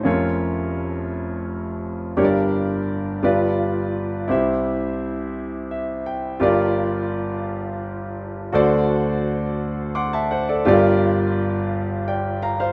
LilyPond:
\new Staff \with { instrumentName = "Grand piano" } { \time 6/8 \key g \dorian \tempo 4. = 57 << { r2. | r2. | r2 e''8 g''8 | r2. |
r2 <fis'' c''' d'''>16 <e'' a''>16 <c'' fis''>16 <a' d''>16~ | <a' d''>16 r4. r16 <d'' g''>8 <f'' bes''>16 <c'' f''>16 | } \\ { <f,, f, des' f' bes' des''>2. | <g,, g, d' g' bes' des'' d''>4. <g,, g, f' g' b' d''>4. | <c, c e' g' c'' e''>2. | <g,, g, f' g' bes' d''>2. |
<d, d fis' a' c'' d''>2. | <g,, g, f' g' a' bes' d''>2. | } >> }